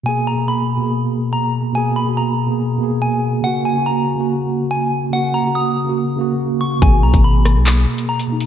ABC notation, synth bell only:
X:1
M:4/4
L:1/8
Q:1/4=142
K:G#m
V:1 name="Synth bell"
g a b4 a z | g b a4 g z | f g a4 g z | f a d'4- d' c' |
g a b4 a z |]